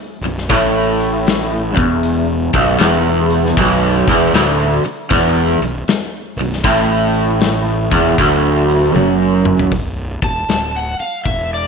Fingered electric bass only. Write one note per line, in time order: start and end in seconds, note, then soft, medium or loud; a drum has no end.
0.21 0.47 B0 medium
0.49 1.73 A1 medium
1.77 2.50 E1 medium
2.54 2.78 B0 loud
2.81 3.53 E1 loud
3.57 4.04 B0 medium
4.07 4.32 E1 medium
4.33 4.80 D1 loud
4.83 muted fingered electric bass stroke soft
5.10 5.57 E1 medium
5.60 5.85 B0 medium
5.87 muted fingered electric bass stroke soft
6.36 6.62 B0 medium
6.64 7.87 A1 medium
7.92 8.16 E1 loud
8.18 8.91 D1 medium
8.94 9.67 F#1 medium
9.71 10.18 B0 medium
10.22 10.47 E1 medium
10.48 10.95 D1 medium
10.99 muted fingered electric bass stroke soft
11.25 11.67 E1 medium